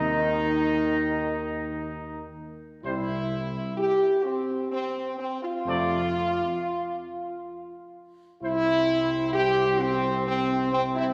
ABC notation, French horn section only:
X:1
M:3/4
L:1/16
Q:1/4=65
K:Flyd
V:1 name="French horn section"
_E8- E2 z2 | E4 G2 C2 C2 C F- | F8- F2 z2 | E4 G2 C2 C2 C E |]